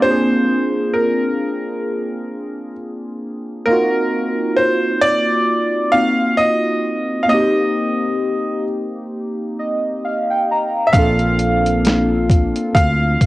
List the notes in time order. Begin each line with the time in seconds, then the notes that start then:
0.00 A#3 C4 D4 F4 G4 C5
0.11 G#4
0.94 A#4
3.65 A#3 C4 D#4 A#4
3.71 F4 F#4
4.56 C5
5.01 D5
5.92 A#3 C4 D#4 F4 F#4 F5
6.37 D#5
7.23 F5
7.28 A#3 C4 D#5
7.32 D#4 G4
9.59 D#5
10.05 F5
10.30 G5
10.51 A#5
10.87 E5
10.93 A#1 A#3 C4 D4 F5, kick, closed hi-hat
10.97 F4 A4
11.19 closed hi-hat
11.39 closed hi-hat
11.66 closed hi-hat
11.85 snare, closed hi-hat
12.30 kick, closed hi-hat
12.56 closed hi-hat
12.75 D2 F5, kick, closed hi-hat
13.21 kick, closed hi-hat